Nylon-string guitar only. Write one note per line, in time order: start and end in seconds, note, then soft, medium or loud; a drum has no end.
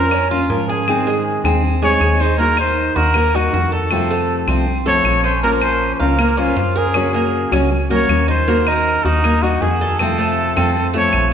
0.00 0.11 A#3 soft
0.00 0.11 C#4 medium
0.00 0.11 F4 medium
0.11 muted nylon-string guitar stroke soft
0.31 0.49 A#3 soft
0.31 0.49 C#4 medium
0.31 0.49 F4 medium
0.49 0.87 F3 soft
0.49 0.87 A#3 soft
0.49 0.87 C#4 soft
0.49 0.87 F4 soft
0.87 1.44 D#3 medium
0.87 1.44 G#3 medium
0.87 1.44 C4 medium
0.87 1.45 D#4 medium
0.87 1.43 G#4 medium
1.44 1.63 G#3 soft
1.44 1.63 C4 medium
1.44 1.63 D#4 medium
1.44 1.63 G#4 medium
1.63 muted nylon-string guitar stroke medium
1.83 2.00 G#3 soft
1.83 2.00 C4 medium
1.83 2.01 D#4 medium
1.83 2.01 G#4 medium
2.01 2.39 G#3 soft
2.01 2.39 C4 soft
2.01 2.39 D#4 soft
2.01 2.39 G#4 soft
2.39 2.96 D#3 medium
2.39 2.96 A#3 medium
2.39 2.96 D#4 medium
2.39 2.95 F#4 medium
2.96 3.14 A#3 soft
2.96 3.14 D#4 medium
2.96 3.15 F#4 medium
3.15 muted nylon-string guitar stroke medium
3.34 3.53 A#3 soft
3.34 3.53 D#4 medium
3.34 3.53 F#4 medium
3.53 3.91 D#3 soft
3.53 3.91 A#3 soft
3.53 3.91 D#4 soft
3.53 3.91 F#4 medium
3.90 4.47 C3 medium
3.90 4.49 F3 medium
3.90 4.48 A3 medium
3.90 4.48 C4 medium
3.90 4.48 F4 medium
4.48 4.66 F3 soft
4.48 4.66 A3 soft
4.48 4.66 C4 medium
4.48 4.66 F4 medium
4.67 muted nylon-string guitar stroke soft
4.85 5.04 F3 soft
4.85 5.04 A3 medium
4.85 5.05 C4 medium
4.85 5.04 F4 medium
5.05 5.42 F3 soft
5.05 5.43 A3 soft
5.05 5.43 C4 soft
5.05 5.43 F4 soft
5.43 5.99 F3 medium
5.43 6.01 A#3 medium
5.43 6.01 C#4 medium
5.43 5.99 F4 medium
5.43 5.99 C5 medium
6.00 6.18 A#3 soft
6.00 6.19 C#4 medium
6.00 6.19 F4 medium
6.00 6.19 C5 medium
6.19 muted nylon-string guitar stroke medium
6.38 6.56 A#3 soft
6.38 6.57 C#4 medium
6.38 6.57 F4 soft
6.38 6.57 C5 medium
6.57 6.94 A#3 soft
6.57 6.95 C#4 soft
6.57 6.95 F4 soft
6.57 6.95 C5 medium
6.95 7.51 C#3 medium
6.95 7.52 F#3 medium
6.95 7.52 A#3 medium
6.95 7.51 C#4 medium
6.95 7.51 F#4 medium
7.51 7.70 F#3 medium
7.51 7.70 A#3 soft
7.51 7.70 C#4 medium
7.51 7.70 F#4 medium
7.71 muted nylon-string guitar stroke soft
7.90 8.07 F#3 medium
7.90 8.08 A#3 soft
7.90 8.09 C#4 soft
7.90 8.08 F#4 medium
8.09 8.46 F#3 soft
8.09 8.46 A#3 soft
8.09 8.47 C#4 soft
8.09 8.47 F#4 soft
8.47 9.03 D#3 medium
8.47 9.04 A#3 medium
8.47 9.04 D#4 medium
8.47 9.03 F#4 medium
9.04 9.22 A#3 soft
9.04 9.23 D#4 medium
9.04 9.23 F#4 medium
9.23 muted nylon-string guitar stroke medium
9.42 9.61 A#3 medium
9.42 9.61 D#4 medium
9.42 9.61 F#4 medium
9.61 9.99 D#3 soft
9.61 9.99 A#3 soft
9.61 9.99 D#4 soft
9.61 10.00 F#4 soft
10.00 10.56 C3 medium
10.00 10.57 F3 medium
10.00 10.57 A3 medium
10.00 10.56 C4 medium
10.00 10.55 F4 medium
10.57 10.75 F3 soft
10.57 10.75 A3 medium
10.57 10.75 C4 medium
10.57 10.75 F4 medium
10.76 muted nylon-string guitar stroke medium
10.95 11.13 F3 soft
10.95 11.13 A3 medium
10.95 11.13 C4 medium
10.95 11.13 F4 medium
11.14 11.33 F3 soft
11.14 11.33 A3 soft
11.14 11.33 C4 soft
11.14 11.33 F4 soft